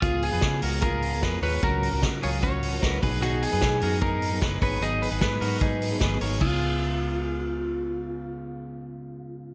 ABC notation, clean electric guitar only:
X:1
M:4/4
L:1/16
Q:1/4=150
K:Dbmix
V:1 name="Clean electric guitar"
[FA]3 [Ac]3 [GB]2 [FA]4 [Ac]2 [Bd]2 | [DG]3 [GB]3 [FA]2 [DG]4 [GB]2 [Ac]2 | [EA]3 [Ac]3 [GB]2 [EA]4 [Ac]2 [Ad]2 | [EA]3 [Ac]3 [GB]2 [EA]4 [Ac]2 [Bd]2 |
A12 z4 | z16 |]